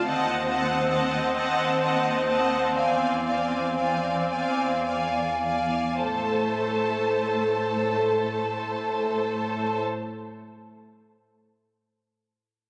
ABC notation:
X:1
M:12/8
L:1/8
Q:3/8=36
K:Am
V:1 name="Violin section"
a a a a a a ^g g g g g g | a12 |]
V:2 name="Violin section"
[^d^f] [df] [df] [df] [df] [df] [=d=f] [df] [df] [df] [df] [df] | [Ac]12 |]
V:3 name="Viola section"
^B,8- B,2 z2 | A,12 |]
V:4 name="Cello section" clef=bass
^D,,3 D,,3 E,,3 E,,3 | A,,12 |]